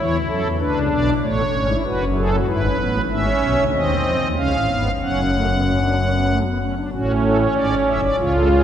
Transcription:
pipe organ
Already playing: E2 E3 E4 C#5
0.28 F#2 F#3 A4
0.44 E2 E3
0.59 D2 D3 D4 B4
0.75 C#2 C#3
0.90 B1 B2 D5
1.22 A1 A2 A3 C#5
1.53 G#1 G#2 C#4
1.69 E4
1.85 F#1 F#2 F#4 B4
2.16 G#4 A4
2.33 F#4
2.47 G#1 G#2 E4 B4
2.63 C#4
2.79 A1 A2 B3
3.10 G#1 G#2 C#4 E5
3.42 B1 B2
3.57 D2 D3
3.73 D#2 D#3 C4 D#5
4.05 F2 F3
4.22 D#2 D#3
4.37 C#2 C#3 C#4 F5
4.53 A1 A2
4.69 G#1 G#2 B3
5.01 F#1 F#2 C#4 F#5
5.33 A3
5.49 B3
5.65 C#4
5.80 D4
5.96 C#4
6.13 B3
6.28 A3
6.44 B3
6.61 C#4
6.76 D4
6.92 A1 A2 C#4 F#4
7.24 A4
7.40 C#5
7.55 G#1 G#2 D5
7.88 F#1 F#2 E5
8.02 D5
8.19 C#2 C#3 F4 C#5
8.35 A4
8.51 G#4

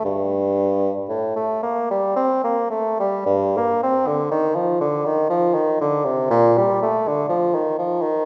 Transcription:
bassoon
0.05 G2
1.09 A2
1.36 A3
1.63 A#3
1.91 G3
2.16 C4
2.44 A#3
2.70 A3
2.99 G3
3.26 G2
3.57 A#3
3.83 C4
4.07 D3
4.31 D#3
4.55 F3
4.81 D3
5.06 D#3
5.30 F3
5.54 D#3
5.80 D3
6.05 C3
6.30 A#2
6.57 G3
6.82 A3
7.08 D3
7.29 F3
7.54 D#3
7.78 F3
8.02 D#3

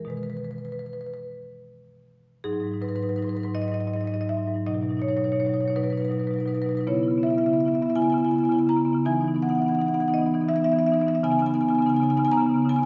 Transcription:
marimba
Already playing: E3
0.05 B2 D#3 G#3
0.10 B4
0.17 B4
0.23 B4
0.30 B4
0.37 B4
0.44 B4
0.51 B4
0.58 B4
0.65 B4
0.72 B4
0.79 B4
0.86 B4
0.93 B4
1.01 B4
1.07 B4
1.14 B4
2.44 G#2 F#3 D#4 G#4
2.53 G#2 F#3 D#4
2.60 G#2 F#3 D#4
2.67 D#4
2.71 G#2 F#3 D#4
2.81 G#2 F#3 D#4 B4
2.88 F#3 D#4 B4
2.95 G#2 D#4 B4
3.00 F#3 D#4 B4
3.05 G#2
3.09 F#3 D#4 B4
3.15 G#2 F#3 D#4 B4
3.22 G#2 D#4 B4
3.28 F#3 B4
3.33 G#2 D#4
3.37 F#3 D#4 B4
3.43 G#2 F#3 B4
3.48 D#4
3.54 G#2 F#3 D#4 D#5
3.62 G#2 F#3 D#4 D#5
3.68 F#3 D#4 D#5
3.74 G#2 D#5
3.79 F#3 D#4 D#5
3.87 G#2 F#3 D#4 D#5
3.94 G#2 F#3 D#4 D#5
4.01 G#2 D#4 D#5
4.05 F#3 D#5
4.12 G#2 F#3 D#4 D#5
4.21 F#3 D#4 D#5
4.27 G#2 F#3 D#4 E5
4.37 G#2 F#3 D#4
4.46 G#2 F#3 D#4
4.54 F#3 D#4
4.58 G#2
4.66 B2 F#3 D#4 D#5
4.74 B2 F#3 D#4
4.81 B2 F#3 D#4
4.89 B2 F#3 D#4
4.97 B2 F#3 D#4
5.02 D#4 C#5
5.08 B2 F#3 D#4 C#5
5.16 B2 F#3 D#4 C#5
5.24 B2 F#3 D#4 C#5
5.32 B2 F#3 D#4 C#5
5.40 F#3 D#4 C#5
5.45 B2 D#4 C#5
5.49 B2 F#3
5.54 F#3 D#4 C#5
5.61 B2 D#4 C#5
5.65 F#3 C#5
5.70 B2 D#4
5.76 B2 F#3 D#4 B4
5.83 B2 F#3 D#4 B4
5.90 B2 F#3 D#4 B4
5.98 F#3 D#4 B4
6.02 B2 B4
6.08 B2 F#3 D#4 B4
6.16 F#3 D#4 B4
6.20 B2 D#4
6.27 B2 F#3 B4
6.33 F#3 D#4 B4
6.39 B2 D#4 B4
6.45 B2 F#3 D#4 B4
6.54 B2 F#3 D#4 B4
6.62 F#3 D#4 B4
6.66 B2 F#3 B4
6.72 B2 D#4
6.77 F#3 D#4 B4
6.87 C#3 B3 E4 C#5
6.95 C#3 B3 E4
7.03 B3 E4
7.08 C#3 B3 E4
7.18 C#3 B3 E4
7.23 B3 E4 E5
7.28 C#3 E5
7.34 C#3 B3 E4
7.38 E4 E5
7.44 C#3 B3 E5
7.48 E4
7.53 C#3 B3 E5
7.57 B3 E4 E5
7.65 C#3 B3 E4 E5
7.74 C#3 B3 E4 E5
7.81 B3 E4 E5
7.86 C#3 E4 E5
7.90 B3
7.95 C#3 B3 E4 G#5
8.02 C#3 B3 E4 G#5
8.10 B3 E4 G#5
8.14 C#3 G#5
8.19 C#3 B3 E4
8.25 B3 E4 G#5
8.31 C#3 E4 G#5
8.36 B3 G#5
8.40 C#3 B3 E4
8.45 E4 G#5
8.49 C#3 B3 G#5
8.55 C#3 E4 G#5
8.59 B3 E4
8.67 C#3 B3 E4 A#5
8.77 C#3 B3 E4
8.84 C#3 B3 E4
8.93 C#3 B3 E4
9.05 E3 B3 D#4 G#5
9.13 E3 B3 D#4
9.20 E3 B3 D#4
9.28 B3 D#4
9.34 E3 B3 D#4
9.42 E3 B3 D#4 F#5
9.49 E3 B3 D#4 F#5
9.55 B3 D#4 F#5
9.60 E3 F#5
9.65 B3 D#4 F#5
9.69 E3 B3 D#4
9.75 E3 D#4 F#5
9.80 B3 F#5
9.86 E3 B3 D#4 F#5
9.94 B3 D#4 F#5
10.00 E3 B3 D#4 F#5
10.08 E3 B3 D#4 F#5
10.14 E3 D#4 D#5
10.18 B3 D#4
10.26 E3 B3 D#4
10.34 E3 B3 D#4
10.41 E3 B3 D#4
10.48 B3 D#4 E5
10.54 E3 B3 D#4 E5
10.62 E3 D#4 E5
10.66 B3 D#4
10.72 E3 B3 E5
10.76 B3 D#4 E5
10.82 E3 D#4
10.87 E3 B3 E5
10.92 B3 D#4 E5
10.99 E3 B3 D#4 E5
11.07 E3 B3 D#4 E5
11.14 D#4 E5
11.23 C#3 B3 D#4 G#5
11.31 C#3 B3 D#4 G#5
11.39 C#3 B3 D#4 G#5
11.46 B3 D#4 G#5
11.51 C#3 D#4 G#5
11.55 B3
11.61 C#3 B3 D#4 G#5
11.69 C#3 B3 D#4 G#5
11.75 B3 G#5
11.79 C#3 D#4 G#5
11.86 C#3 B3 D#4 G#5
11.94 B3 D#4 G#5
12.00 C#3 B3 D#4 G#5
12.09 C#3 B3 D#4 G#5
12.17 C#3 B3 D#4 G#5
12.25 C#3 B3 D#4 G#5
12.32 B3 D#4 A#5
12.37 C#3 B3 D#4
12.46 C#3 B3 D#4
12.54 C#3 B3 D#4
12.62 C#3 B3 D#4
12.69 B3 G#5
12.74 C#3 D#4 G#5
12.79 B3 D#4

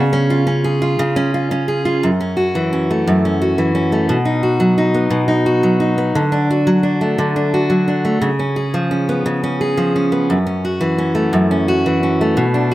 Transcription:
steel-string acoustic guitar
Already playing: C#3
0.13 C#4
0.30 F4
0.47 C#4
0.64 G#4
0.82 F4
0.99 C#3
1.16 C#4
1.34 F4
1.51 C#4
1.68 G#4
1.85 F4
2.03 F#2
2.20 C#4
2.37 F#4
2.55 E3
2.73 C#4
2.91 A3
3.07 F#2
3.25 C#4
3.42 F#4
3.58 E3
3.75 C#4
3.92 A3
4.09 B2
4.25 D#4
4.43 F#4
4.60 F#3
4.78 D#4
4.94 B3
5.10 B2
5.28 D#4
5.46 F#4
5.63 F#3
5.80 D#4
5.98 B3
6.15 D3
6.32 D4
6.51 F#4
6.67 F#3
6.83 D4
7.01 A3
7.18 D3
7.36 D4
7.54 F#4
7.70 F#3
7.88 D4
8.05 A3
8.21 C#3
8.39 C#4
8.56 G#4
8.74 F3
8.91 C#4
9.09 B3
9.26 C#3
9.44 C#4
9.61 G#4
9.77 F3
9.96 C#4
10.12 B3
10.30 F#2
10.47 C#4
10.65 F#4
10.81 E3
10.98 C#4
11.15 A3
11.33 F#2
11.51 C#4
11.68 F#4
11.86 E3
12.03 C#4
12.21 A3
12.37 B2
12.54 D4

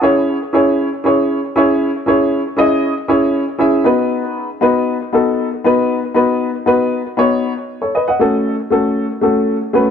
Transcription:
upright piano
Already playing: F#5 A5
0.01 C#4 E4 G#4 C#5
0.53 C#4 E4 G#4 C#5
1.04 C#4 E4 G#4 C#5
1.56 C#4 E4 G#4 C#5
2.06 C#4 E4 G#4 C#5
2.57 C#4 E4 G#4 D#5
3.08 C#4 E4 G#4 C#5
3.59 C#4 E4 G#4 E5
3.84 B3 D#4 F#4 B4
4.61 B3 D#4 F#4 B4
5.13 B3 D#4 F#4 A4
5.64 B3 D#4 F#4 B4
6.14 B3 D#4 F#4 B4
6.66 B3 D#4 F#4 B4
7.17 B3 D#4 F#4 C#5
7.82 A4 C#5
7.95 B4 D#5
8.08 D#5 F#5
8.19 A3 C#4 F#4 A4
8.70 A3 C#4 F#4 A4
9.21 A3 C#4 F#4 A4
9.73 A3 C#4 F#4 B4

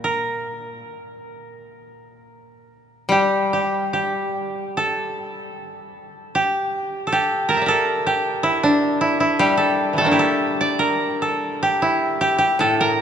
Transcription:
koto
Already playing: A#2
0.04 A#4
3.09 G3 G4
3.53 G4
3.93 G4
4.77 A4
6.35 G4
7.07 A4
7.12 G4
7.49 A#4 A5 A#5
7.54 E5 G5
7.62 D5
7.66 A4 A#4
8.07 G4
8.43 E4
8.63 D4
9.01 E4
9.20 E4
9.39 G3 G4
9.57 A4
9.93 E3 G3
9.98 A3 A4
10.04 A#3 D4
10.11 E4 G4
10.19 A4
10.61 D5
10.79 A#4
11.22 A4
11.63 G4
11.82 E4
12.21 G4
12.38 G4
12.59 A2 A4
12.81 A#4

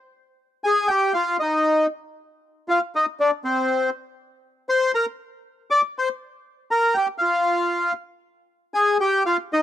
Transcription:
bandoneon
0.64 G#4 G#5
0.88 G4 G5
1.14 F4 F5
1.40 D#4 D#5
2.68 F4 F5
2.95 D#4 D#5
3.20 D4 D5
3.44 C4 C5
4.69 C5 C6
4.95 A#4 A#5
5.71 D5 D6
5.98 C5 C6
6.71 A#4 A#5
6.94 G4 G5
7.18 F4 F5
8.74 G#4 G#5
9.00 G4 G5
9.26 F4 F5
9.53 D#4 D#5

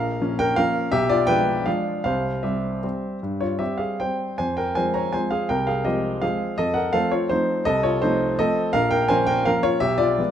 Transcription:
grand piano
Already playing: A#1 A#4 F5
0.21 F3 A#3 C#4
0.39 A#4 G5
0.56 F3 A#3 C#4 A#4 F5
0.92 B1 G4 E5
1.09 F4 D5
1.27 F3 G#3 D4 B4 G5
1.66 F3 G#3 D4 G#4 F5
2.04 C2 C5 F5
2.43 G3 C4 G4 E5
2.83 G3 C4
3.23 G2
3.41 F4 C#5
3.59 G3 C4 G4 E5
3.78 G#4 F5
4.00 G3 C4 C5 G5
4.38 F2 C5 G#5
4.57 A#4 G5
4.75 F3 G#3 C4 C5 G#5
4.94 C#5 A#5
5.13 F3 G#3 C4 C5 G#5
5.31 G#4 F5
5.49 C2 A#4 G5
5.67 G#4 F5
5.85 F3 G#3 C4 G4 D#5
6.21 F3 G#3 C4 G#4 F5
6.58 F2 A4 D#5
6.74 A#4 F#5
6.93 F3 A3 C4 A4 F5
7.11 F4 C#5
7.29 F3 A3 C4 D#4 C5
7.65 C2 A4 D#5
7.83 F4 C#5
8.02 F3 A3 C4 D#4 C5
8.39 F3 A3 C4 A4 D#5
8.73 A#1 A#4 F5
8.91 A#4 G5
9.09 F3 A#3 C#4 C5 G#5
9.27 A#4 G5
9.45 F3 A#3 C#4 A#4 F5
9.63 F4 C#5
9.80 B1 G4 E5
9.98 F4 D5
10.18 F3 G#3 B3

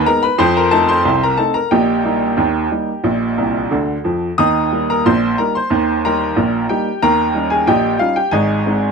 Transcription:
upright piano
0.06 G#3 B3 D#4 A#4 A#5
0.23 B4 B5
0.38 F2 F3 C5 C6
0.57 A#4 A#5
0.71 A3 C4 D#4 A4 A5
0.89 C5 C6
1.05 C2 C3
1.23 A#4 A#5
1.37 A3 C4 D#4 A4 A5
1.54 A#4 A#5
1.71 A#1 A#2 G4 D#5 G5
2.04 G3 A#3 D#4
2.37 D#2 D#3
2.71 G3 A#3 D#4
3.04 A#1 A#2
3.38 C2 C3
3.71 D2 D3
4.04 F2 F3
4.38 D#2 D#3 D#5 A#5 D#6
4.72 G3 A#3 D#4
4.90 A#4 A#5
5.06 A#1 A#2 C5 C6
5.38 G3 A#3 D#4 A#4 A#5
5.55 C5 C6
5.70 D#2 D#3
6.05 G3 A#3 D#4 A#4 G5 A#5
6.36 A#1 A#2
6.69 G3 A#3 D#4 G4 G5
7.02 D#2 D#3 A#4 G5 A#5
7.34 G3 C#4 D#4
7.50 G#4 G#5
7.67 A#1 A#2 G4 D#5 G5
7.99 G3 C#4 D#4 F4 F5
8.16 G4 G5
8.31 G#1 G#2 G#4 D#5 G#5
8.66 G#3 C4 D#4

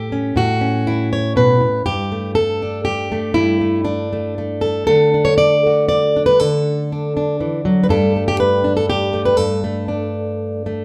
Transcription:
steel-string acoustic guitar
Already playing: A2 A3 G4 A4
0.12 C#4
0.36 A2 F#4
0.61 C#4
0.87 E4
1.13 C#5
1.36 B2 B4
1.60 A2
1.86 G2 G4
2.12 A3
2.35 A4
2.62 D4
2.85 G4
3.12 A3
3.34 G2 E4
3.61 A3
3.85 D4
4.13 A3
4.38 A3
4.61 A4
4.87 D3 A3 D4 A4
5.14 D4
5.25 C#5
5.38 D5
5.66 F#4
5.89 D5
6.16 D4
6.26 B4
6.40 D3 A4
6.92 D4
7.17 D4
7.40 E3
7.65 F#3
7.83 B4
7.89 G2 G3 A3 D4 A4
8.16 A3
8.28 G4
8.40 B4
8.64 D4
8.77 A4
8.90 G4
9.13 A3
9.25 B4
9.37 G2 A4
9.64 A3
9.88 D4
10.66 A3

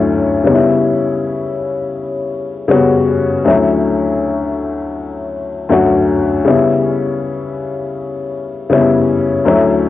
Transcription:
upright piano
Already playing: D2 F#3 A3 C#4 E4
0.44 C#3 G3 B3 C#4
0.48 D#4
0.55 E4
2.68 C#3 G3 B3 C#4
2.72 F#4
3.45 D2 F#3 A3 C#4
3.49 E4
5.69 D2 F#3 A3 C#4
5.73 F#4
6.44 C#3 G3 B3 C#4
6.49 E4
8.70 C#3 G3 B3 C#4
8.74 E4
9.45 D2 F#3 A3 C#4
9.49 E4

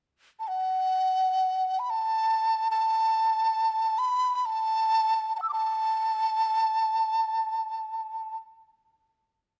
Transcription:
dizi
0.40 A5
0.49 F#5
1.79 B5
1.90 A5
2.71 A5
3.99 B5
4.35 B5
4.46 A5
5.36 F#5 A5
5.42 E6
5.49 A5 D6

